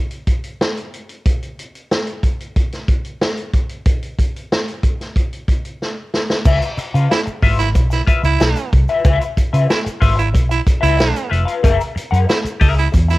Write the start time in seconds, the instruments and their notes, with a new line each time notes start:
0.11 closed hi-hat
0.27 kick, closed hi-hat
0.44 closed hi-hat
0.61 snare
0.77 closed hi-hat
0.94 closed hi-hat
1.09 closed hi-hat
1.26 kick, closed hi-hat
1.43 closed hi-hat
1.59 closed hi-hat
1.75 closed hi-hat
1.91 snare
2.07 closed hi-hat
2.23 kick, closed hi-hat
2.40 closed hi-hat
2.56 kick, closed hi-hat
2.72 snare, closed hi-hat
2.88 kick, closed hi-hat
3.05 closed hi-hat
3.21 snare
3.37 closed hi-hat
3.53 kick, closed hi-hat
3.69 closed hi-hat
3.85 kick, closed hi-hat
4.02 closed hi-hat
4.18 kick, closed hi-hat
4.36 closed hi-hat
4.52 snare
4.68 closed hi-hat
4.83 kick, closed hi-hat
5.01 snare, closed hi-hat
5.16 kick, closed hi-hat
5.33 closed hi-hat
5.48 kick, closed hi-hat
5.65 closed hi-hat
5.82 snare
6.14 snare
6.30 snare
6.45 fingered electric bass C#2, clean electric guitar F4 B4 E5, kick, crash, shaker
6.62 closed hi-hat, shaker
6.77 muted fingered electric bass stroke, muted clean electric guitar stroke, closed hi-hat, shaker
6.94 fingered electric bass C#3, clean electric guitar F4 B4 F5, closed hi-hat, shaker
7.10 baritone saxophone E4, muted clean electric guitar stroke, snare, shaker
7.26 muted clean electric guitar stroke, muted fingered electric bass stroke, closed hi-hat, shaker
7.42 fingered electric bass G#1, clean electric guitar F4 B4 E5, kick, open hi-hat, shaker
7.59 baritone saxophone E4, muted clean electric guitar stroke, snare, closed hi-hat, shaker
7.75 fingered electric bass B1, muted clean electric guitar stroke, kick, closed hi-hat, shaker
7.90 baritone saxophone E4, muted clean electric guitar stroke, snare, closed hi-hat, shaker
8.07 clean electric guitar F4 B4 E5, kick, closed hi-hat, shaker
8.23 fingered electric bass C#2, baritone saxophone E4, muted clean electric guitar stroke, closed hi-hat, shaker
8.39 fingered electric bass B1, muted clean electric guitar stroke, snare, shaker
8.56 muted clean electric guitar stroke, closed hi-hat, shaker
8.73 fingered electric bass C2, kick, closed hi-hat
8.88 clean electric guitar F4 B4 E5, closed hi-hat, shaker
9.04 fingered electric bass C#2, clean electric guitar F4 B4 E5, kick, closed hi-hat, shaker
9.21 closed hi-hat, shaker
9.37 muted fingered electric bass stroke, muted clean electric guitar stroke, kick, closed hi-hat, shaker
9.53 fingered electric bass C#3, clean electric guitar F4 B4 E5, closed hi-hat, shaker
9.68 baritone saxophone E4, muted clean electric guitar stroke, snare, shaker
9.85 muted clean electric guitar stroke, muted fingered electric bass stroke, closed hi-hat, shaker
10.00 fingered electric bass G#1, clean electric guitar F4 B4 E5, kick, open hi-hat, shaker
10.17 baritone saxophone E4, muted clean electric guitar stroke, closed hi-hat, shaker
10.33 fingered electric bass B1, muted clean electric guitar stroke, kick, closed hi-hat, shaker
10.49 baritone saxophone E4, muted clean electric guitar stroke, closed hi-hat, shaker
10.67 kick, closed hi-hat, shaker
10.81 fingered electric bass C#2, baritone saxophone E4, clean electric guitar F4 B4 E5, closed hi-hat, shaker
10.97 fingered electric bass B1, muted clean electric guitar stroke, snare, shaker
11.14 muted clean electric guitar stroke, closed hi-hat, shaker
11.30 fingered electric bass F1, clean electric guitar F4 B4 E5, closed hi-hat
11.45 clean electric guitar F4 B4 F5, closed hi-hat, shaker
11.63 fingered electric bass F#1, clean electric guitar G#4 A#4 E5, kick, closed hi-hat, shaker
11.80 closed hi-hat, shaker
11.95 muted clean electric guitar stroke, muted fingered electric bass stroke, closed hi-hat, shaker
12.11 fingered electric bass F#2, clean electric guitar G#4 A#4 F#5, closed hi-hat, shaker
12.27 baritone saxophone E4, muted clean electric guitar stroke, snare, shaker
12.43 muted clean electric guitar stroke, muted fingered electric bass stroke, closed hi-hat, shaker
12.60 fingered electric bass C#2, clean electric guitar G#4 A#4 E5, kick, open hi-hat, shaker
12.76 baritone saxophone E4, muted clean electric guitar stroke, closed hi-hat, shaker
12.92 fingered electric bass E2, muted clean electric guitar stroke, kick, closed hi-hat, shaker
13.08 baritone saxophone E4, muted clean electric guitar stroke, snare, closed hi-hat, shaker